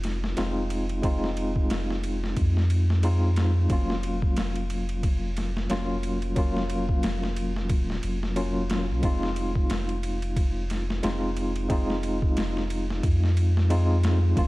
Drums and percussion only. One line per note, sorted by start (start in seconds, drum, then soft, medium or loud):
0.04 snare soft
0.04 ride medium
0.24 snare medium
0.37 snare loud
0.37 ride medium
0.70 ride medium
0.89 ride soft
1.03 kick loud
1.03 ride medium
1.24 snare medium
1.37 ride medium
1.56 kick medium
1.70 snare loud
1.70 ride medium
1.90 snare soft
2.04 ride medium
2.24 snare soft
2.37 kick loud
2.37 ride medium
2.57 snare soft
2.70 ride medium
2.90 snare soft
3.03 ride medium
3.36 snare loud
3.36 ride medium
3.70 kick loud
3.70 ride medium
3.90 snare medium
4.03 ride medium
4.22 kick medium
4.37 snare loud
4.37 ride medium
4.56 ride soft
4.70 ride medium
4.89 ride soft
5.03 kick loud
5.03 ride medium
5.37 snare soft
5.37 ride medium
5.57 snare medium
5.70 snare loud
5.70 ride medium
6.03 ride medium
6.22 ride soft
6.36 kick loud
6.36 ride medium
6.57 snare medium
6.70 ride medium
6.89 kick medium
7.03 snare loud
7.03 ride medium
7.23 snare medium
7.36 ride medium
7.56 snare soft
7.69 kick loud
7.69 ride medium
7.90 snare soft
8.03 ride medium
8.23 snare soft
8.36 ride medium
8.70 snare loud
8.70 ride medium
9.03 kick loud
9.03 ride medium
9.23 snare medium
9.36 ride medium
9.55 kick medium
9.70 snare loud
9.70 ride medium
9.89 ride soft
10.03 ride medium
10.22 ride soft
10.36 kick loud
10.36 ride medium
10.70 snare soft
10.70 ride medium
10.90 snare medium
11.03 snare loud
11.03 ride medium
11.37 ride medium
11.56 ride soft
11.70 kick loud
11.70 ride medium
11.90 snare soft
12.03 ride medium
12.22 kick medium
12.37 snare loud
12.37 ride medium
12.57 snare soft
12.70 ride medium
12.90 snare soft
13.03 kick loud
13.03 ride medium
13.24 snare soft
13.37 ride medium
13.57 snare soft
13.70 ride medium
14.04 snare loud
14.04 ride medium
14.37 kick loud
14.37 ride medium